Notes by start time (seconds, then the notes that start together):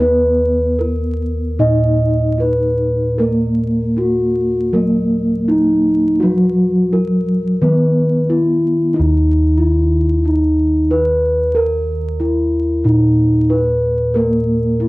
Already playing: D#2
0.00 B3 B4
0.79 E4 A#4
1.59 A#2 D#4 D#5
2.38 E4 B4
3.18 A#3 A#4
3.97 E4 F#4
4.73 F#3 A#3 A#4
5.48 D#4 E4
6.20 F#3 F#4
6.92 E4 A#4
7.61 D#3 B3 B4
8.29 E4
8.94 D#4
8.99 D#2
9.57 E4
10.25 D#4
10.90 E4 B4
11.55 A#4
12.20 E4
12.84 A#2 D#4
13.50 E4 B4
14.14 A#3 A#4
14.80 E4